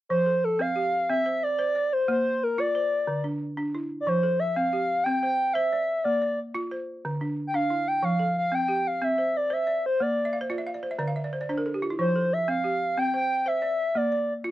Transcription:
0.09 0.43 F3 medium
0.09 0.46 C5 medium
0.26 0.76 A4 medium
0.44 0.62 A4 medium
0.59 0.93 C4 medium
0.59 1.09 F5 loud
0.76 1.26 G4 medium
1.09 1.43 C4 medium
1.09 1.45 E5 loud
1.26 1.57 C5 medium
1.43 1.94 D5 loud
1.59 1.92 C5 medium
1.75 2.25 D5 medium
1.93 2.09 C5 medium
2.08 2.42 A#3 medium
2.08 2.45 C5 medium
2.43 2.61 A#4 medium
2.58 2.92 F4 medium
2.58 3.25 D5 medium
2.75 3.25 C5 medium
3.07 3.41 D3 medium
3.24 3.56 D4 medium
3.57 3.91 D4 medium
3.75 4.24 E4 medium
4.01 4.10 D5 medium
4.07 4.40 F3 medium
4.07 4.41 C5 medium
4.23 4.73 A4 medium
4.39 4.57 E5 medium
4.56 4.90 C4 medium
4.56 5.05 F5 loud
4.73 5.23 G4 medium
5.04 5.39 C4 medium
5.04 5.20 G5 loud
5.20 5.54 C5 medium
5.20 5.55 G5 loud
5.53 5.89 C5 medium
5.53 6.04 E5 medium
5.72 6.20 D5 medium
6.04 6.38 A#3 medium
6.04 6.39 D5 medium
6.22 6.71 D5 medium
6.54 6.88 F4 medium
6.71 7.21 C5 medium
7.05 7.38 D3 medium
7.21 7.53 D4 medium
7.47 7.56 G5 medium
7.54 7.87 D4 medium
7.54 7.89 F5 loud
7.70 8.20 E4 medium
7.88 8.06 G5 loud
8.03 8.36 F3 medium
8.03 8.37 F5 loud
8.19 8.69 A4 medium
8.38 8.56 F5 medium
8.52 8.85 C4 medium
8.52 8.88 G5 loud
8.68 9.18 G4 medium
8.87 9.05 F5 medium
9.01 9.35 C4 medium
9.01 9.38 E5 medium
9.18 9.49 C5 medium
9.36 9.54 D5 medium
9.50 9.84 C5 medium
9.50 9.85 E5 medium
9.67 10.17 D5 medium
9.86 10.03 C5 medium
10.00 10.34 A#3 medium
10.00 10.38 D5 medium
10.25 10.41 E5 medium
10.33 10.49 F5 medium
10.41 10.57 C5 medium
10.50 10.83 F4 medium
10.50 10.65 D5 medium
10.58 10.74 E5 medium
10.67 10.82 F5 medium
10.74 10.90 D5 medium
10.83 10.98 C5 medium
10.91 11.07 E5 medium
10.99 11.32 D3 medium
10.99 11.15 D5 medium
11.08 11.23 F5 medium
11.16 11.31 E5 medium
11.24 11.40 D5 medium
11.33 11.48 C5 medium
11.41 11.56 D5 medium
11.49 11.82 D4 medium
11.49 11.65 C5 medium
11.58 11.73 A#4 medium
11.66 11.81 A4 medium
11.74 11.89 G4 medium
11.82 11.98 F4 medium
11.90 12.06 E4 medium
11.99 12.32 F3 medium
11.99 12.34 C5 medium
12.16 12.65 A4 medium
12.33 12.49 E5 medium
12.48 12.81 C4 medium
12.48 13.00 F5 loud
12.64 13.14 G4 medium
12.98 13.30 C4 medium
12.98 13.14 G5 loud
13.14 13.45 C5 medium
13.14 13.49 G5 loud
13.46 13.79 C5 medium
13.46 13.98 E5 loud
13.62 14.11 D5 medium
13.95 14.29 A#3 medium
13.95 14.33 D5 medium
14.12 14.51 D5 medium
14.44 14.51 F4 medium

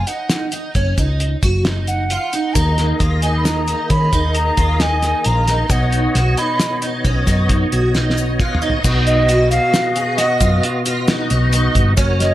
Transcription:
0.07 0.46 D#4 medium
0.07 0.52 F#5 medium
0.07 closed hi-hat medium
0.30 snare medium
0.30 closed hi-hat medium
0.30 shaker soft
0.52 0.72 D#4 medium
0.52 closed hi-hat medium
0.52 shaker soft
0.75 0.94 F#1 medium
0.75 0.94 C#4 medium
0.75 kick medium
0.75 closed hi-hat medium
0.98 1.34 C#2 medium
0.98 1.36 D#4 medium
0.98 kick medium
0.98 closed hi-hat medium
0.98 shaker soft
1.20 closed hi-hat medium
1.43 2.16 F#1 medium
1.43 1.62 F#4 medium
1.43 kick medium
1.43 closed hi-hat soft
1.43 shaker soft
1.65 2.03 D#4 medium
1.65 snare medium
1.65 closed hi-hat medium
1.65 shaker soft
1.87 2.55 F#5 medium
1.87 closed hi-hat soft
1.87 shaker soft
2.10 2.29 F4 medium
2.10 closed hi-hat medium
2.33 2.52 D#4 medium
2.33 closed hi-hat soft
2.33 shaker soft
2.54 2.92 D#2 medium
2.54 5.66 D#3 medium
2.54 5.66 A#3 soft
2.54 2.93 D#4 medium
2.54 5.67 G#4 soft
2.54 5.67 D#5 medium
2.54 3.00 A#5 medium
2.54 kick medium
2.54 closed hi-hat medium
2.54 shaker soft
2.78 snare soft
2.78 closed hi-hat soft
3.00 3.74 D#2 medium
3.00 3.20 F4 medium
3.00 kick medium
3.00 closed hi-hat medium
3.22 3.61 D#4 medium
3.22 3.36 G#5 medium
3.22 closed hi-hat soft
3.37 3.46 B5 medium
3.45 3.89 A#5 medium
3.45 snare medium
3.45 closed hi-hat medium
3.45 shaker soft
3.68 3.87 D#4 medium
3.68 closed hi-hat medium
3.68 shaker soft
3.90 4.09 D#3 medium
3.90 4.09 C#4 medium
3.90 4.32 B5 medium
3.90 kick medium
3.90 closed hi-hat medium
4.13 4.50 D#2 medium
4.13 4.51 D#4 medium
4.13 kick medium
4.13 closed hi-hat medium
4.13 shaker soft
4.35 4.82 A#5 medium
4.35 closed hi-hat medium
4.57 5.12 D#2 medium
4.57 4.77 F4 medium
4.57 kick medium
4.57 closed hi-hat medium
4.57 shaker soft
4.80 5.18 D#4 medium
4.80 5.27 G#5 medium
4.80 snare medium
4.80 closed hi-hat medium
4.80 shaker soft
5.03 snare soft
5.03 closed hi-hat medium
5.03 shaker soft
5.24 5.62 A#1 medium
5.24 5.44 F4 medium
5.24 5.72 A#5 medium
5.24 closed hi-hat medium
5.48 5.67 D#4 medium
5.48 snare soft
5.48 closed hi-hat soft
5.48 shaker soft
5.69 6.07 B1 medium
5.69 8.80 B2 medium
5.69 8.80 B3 medium
5.69 6.08 D#4 medium
5.69 8.80 C#5 medium
5.69 8.60 D#5 medium
5.69 6.40 F#5 medium
5.69 kick medium
5.69 closed hi-hat medium
5.69 shaker soft
5.92 closed hi-hat medium
5.92 shaker soft
6.15 6.34 B1 medium
6.15 6.34 F#4 medium
6.15 snare soft
6.15 closed hi-hat medium
6.37 6.76 D#4 medium
6.37 6.83 B5 medium
6.37 closed hi-hat soft
6.60 snare medium
6.60 closed hi-hat medium
6.60 shaker medium
6.82 7.01 D#4 medium
6.82 closed hi-hat soft
7.05 7.23 B1 medium
7.05 7.24 C#4 medium
7.05 kick medium
7.05 closed hi-hat medium
7.27 7.64 F#2 medium
7.27 7.65 D#4 medium
7.27 kick medium
7.27 snare soft
7.27 closed hi-hat medium
7.27 shaker soft
7.49 kick medium
7.49 closed hi-hat medium
7.49 shaker soft
7.72 8.45 B1 medium
7.72 7.91 F#4 medium
7.72 closed hi-hat medium
7.95 8.32 D#4 medium
7.95 snare soft
8.10 snare soft
8.17 shaker soft
8.40 8.59 F4 medium
8.40 8.61 F#5 medium
8.40 kick medium
8.40 mid tom medium
8.55 mid tom medium
8.62 8.81 D#4 medium
8.62 8.83 D#5 medium
8.70 floor tom medium
8.84 9.57 B1 medium
8.84 11.94 B2 medium
8.84 11.94 B3 medium
8.84 9.22 D#4 medium
8.84 11.94 F#4 medium
8.84 11.95 D#5 medium
8.84 kick loud
8.84 crash medium
8.84 shaker medium
9.07 9.48 D#5 medium
9.07 closed hi-hat medium
9.07 shaker soft
9.28 9.48 F#4 medium
9.28 closed hi-hat medium
9.51 9.89 F#4 medium
9.51 10.19 F5 loud
9.51 closed hi-hat medium
9.51 shaker soft
9.74 snare medium
9.74 closed hi-hat medium
9.74 shaker medium
9.96 10.15 G#4 medium
9.96 closed hi-hat medium
10.18 10.37 F#4 medium
10.18 10.63 D#5 medium
10.18 snare soft
10.18 closed hi-hat medium
10.40 10.59 F#2 medium
10.40 10.78 F4 medium
10.40 kick medium
10.40 closed hi-hat medium
10.40 shaker soft
10.63 closed hi-hat medium
10.85 11.05 F4 medium
10.85 closed hi-hat medium
11.08 11.27 D#4 medium
11.08 snare loud
11.08 closed hi-hat medium
11.30 11.67 B1 medium
11.30 11.49 D#4 medium
11.30 closed hi-hat medium
11.53 11.91 D#4 medium
11.53 closed hi-hat medium
11.53 shaker soft
11.75 11.93 G1 medium
11.75 kick medium
11.75 closed hi-hat medium
11.75 shaker soft
11.97 12.34 F#1 medium
11.97 12.34 F#3 medium
11.97 12.34 C#4 medium
11.97 12.34 F#4 medium
11.97 12.34 A#4 medium
11.97 12.34 C#5 medium
11.97 kick loud
11.97 closed hi-hat medium
11.97 shaker soft
12.19 12.34 D#5 medium
12.19 snare soft
12.19 closed hi-hat medium
12.19 shaker soft

